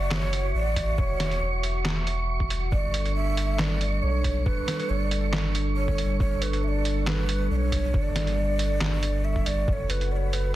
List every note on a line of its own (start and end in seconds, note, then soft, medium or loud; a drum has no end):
0.00 0.53 F#1 loud
0.00 2.68 F#4 medium
0.00 0.12 D5 loud
0.00 2.68 E5 medium
0.00 2.68 F#5 medium
0.00 9.69 C#6 medium
0.11 0.16 D5 loud
0.11 snare loud
0.11 clap medium
0.15 0.54 C#5 loud
0.33 closed hi-hat medium
0.55 0.97 A1 medium
0.55 1.00 D5 loud
0.76 kick medium
0.76 closed hi-hat medium
0.98 1.40 E1 medium
0.98 1.63 C#5 loud
0.98 kick loud
1.20 snare medium
1.20 closed hi-hat medium
1.32 closed hi-hat soft
1.42 2.71 E1 loud
1.63 closed hi-hat medium
1.85 snare loud
1.85 clap medium
2.07 closed hi-hat medium
2.40 kick medium
2.50 closed hi-hat medium
2.72 4.01 G1 loud
2.72 9.64 G3 medium
2.72 9.64 D4 medium
2.72 9.64 A4 medium
2.72 3.13 D5 loud
2.72 kick loud
2.94 closed hi-hat medium
3.05 closed hi-hat soft
3.16 3.61 E5 loud
3.37 closed hi-hat medium
3.59 4.04 D5 loud
3.59 snare loud
3.59 clap medium
3.81 closed hi-hat medium
4.03 4.45 B1 loud
4.03 4.48 C#5 loud
4.24 kick medium
4.24 closed hi-hat medium
4.46 4.91 B4 loud
4.46 kick loud
4.68 snare medium
4.68 closed hi-hat medium
4.80 closed hi-hat soft
4.90 6.18 G1 loud
4.90 5.03 C#5 medium
5.03 5.55 D5 medium
5.11 closed hi-hat medium
5.33 snare loud
5.33 clap medium
5.55 closed hi-hat medium
5.77 6.17 C#5 medium
5.88 kick medium
5.98 closed hi-hat medium
6.20 7.49 G1 medium
6.20 6.44 C#5 loud
6.20 kick loud
6.42 6.65 B4 medium
6.42 closed hi-hat medium
6.53 closed hi-hat soft
6.63 6.69 E5 medium
6.68 7.09 D5 loud
6.85 closed hi-hat medium
7.07 7.50 B4 medium
7.07 snare loud
7.07 clap medium
7.29 closed hi-hat medium
7.50 7.92 B1 loud
7.50 7.57 D5 medium
7.56 7.96 C#5 loud
7.72 kick medium
7.72 closed hi-hat medium
7.94 8.79 G1 loud
7.94 9.26 D5 loud
7.94 kick loud
8.16 snare medium
8.16 closed hi-hat medium
8.27 closed hi-hat soft
8.59 closed hi-hat medium
8.81 9.45 G1 loud
8.81 snare loud
8.81 clap medium
9.03 closed hi-hat medium
9.25 9.48 E5 loud
9.36 kick medium
9.46 9.66 G1 loud
9.46 9.68 D5 loud
9.46 closed hi-hat medium
9.68 10.55 F#1 loud
9.68 10.55 F#4 medium
9.68 10.55 A4 medium
9.68 10.55 B4 medium
9.68 9.74 D5 loud
9.68 10.55 F#5 medium
9.68 kick loud
9.73 9.91 C#5 loud
9.90 10.13 B4 medium
9.90 closed hi-hat medium
10.01 closed hi-hat soft
10.12 10.17 D5 medium
10.16 10.35 C#5 loud
10.33 10.55 B4 medium
10.33 closed hi-hat medium